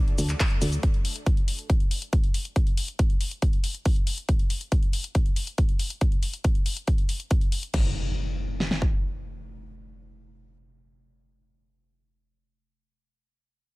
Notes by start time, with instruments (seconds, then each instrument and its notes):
Already playing: analog synth pad F#3 A3 D4 A4 D5
0.08 closed hi-hat
0.18 fm bass D2, open hi-hat, shaker
0.29 clap, closed hi-hat, shaker
0.40 kick, clap, open hi-hat, shaker
0.51 closed hi-hat
0.62 fm bass D2, open hi-hat, shaker
0.72 closed hi-hat, shaker
0.83 kick, closed hi-hat
0.94 closed hi-hat
1.05 open hi-hat
1.16 closed hi-hat
1.26 kick, closed hi-hat
1.37 closed hi-hat
1.48 open hi-hat
1.59 closed hi-hat
1.70 kick, closed hi-hat
1.80 closed hi-hat
1.91 open hi-hat
2.02 closed hi-hat
2.13 kick, closed hi-hat
2.24 closed hi-hat
2.34 open hi-hat
2.45 closed hi-hat
2.56 kick, closed hi-hat
2.67 closed hi-hat
2.77 open hi-hat
2.88 closed hi-hat
2.99 kick, closed hi-hat
3.10 closed hi-hat
3.21 open hi-hat
3.31 closed hi-hat
3.42 kick, closed hi-hat
3.53 closed hi-hat
3.64 open hi-hat
3.75 closed hi-hat
3.85 kick, open hi-hat
3.96 closed hi-hat
4.07 open hi-hat
4.18 closed hi-hat
4.29 kick, closed hi-hat
4.39 closed hi-hat
4.50 open hi-hat
4.61 closed hi-hat
4.72 kick, closed hi-hat
4.83 closed hi-hat
4.93 open hi-hat
5.04 closed hi-hat
5.15 kick, closed hi-hat
5.26 closed hi-hat
5.36 open hi-hat
5.47 closed hi-hat
5.58 kick, closed hi-hat
5.69 closed hi-hat
5.79 open hi-hat
5.90 closed hi-hat
6.01 kick, closed hi-hat
6.12 closed hi-hat
6.23 open hi-hat
6.34 closed hi-hat
6.44 kick, closed hi-hat
6.55 closed hi-hat
6.66 open hi-hat
6.77 closed hi-hat
6.87 kick, closed hi-hat
6.98 closed hi-hat
7.09 open hi-hat
7.20 closed hi-hat
7.31 kick, closed hi-hat
7.41 closed hi-hat
7.52 open hi-hat
7.63 closed hi-hat
7.74 kick, crash, impact
8.60 snare
8.71 snare
8.82 kick